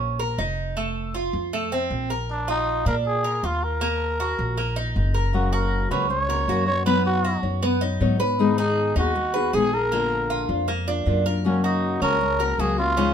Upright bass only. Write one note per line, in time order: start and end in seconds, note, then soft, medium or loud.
0.00 0.35 A#1 medium
0.38 1.28 F1 medium
1.33 1.87 F2 medium
1.91 2.80 A#1 medium
2.86 3.39 A#2 medium
3.43 4.33 D#2 medium
4.39 4.92 A#1 medium
4.96 5.85 F#1 medium
5.91 6.44 C#2 medium
6.48 7.38 F#2 medium
7.43 7.97 F#2 medium
8.01 8.90 G#2 medium
8.96 9.49 D#2 medium
9.54 10.43 A#1 medium
10.49 11.02 F2 medium
11.06 11.96 F#2 medium
12.02 12.55 C#2 medium
12.58 13.14 C#2 medium